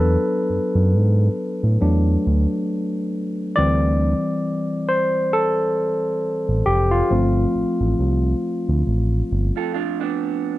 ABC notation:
X:1
M:4/4
L:1/16
Q:"Swing 16ths" 1/4=68
K:Ddor
V:1 name="Clean electric guitar"
z16 | z16 | z8 z3 [FA] [DF] [B,D]3 |]
V:2 name="Tine electric piano"
A6- A z8 z | d6 c2 A6 G F- | F6- F z8 z |]
V:3 name="Tine electric piano"
[^F,B,D]8 [F,A,D]2 z6 | [E,G,C]2 z12 z2 | [F,A,C]2 z12 z2 |]
V:4 name="Analog synth bass" clef=bass
E,, z ^F,, F,, ^G,,2 z A,, E,,2 D,, z4 z | D,,3 z8 z2 A,,, F,,,2 | G,,,2 A,,, A,,, C,,2 z D,, A,,,2 G,,, z4 z |]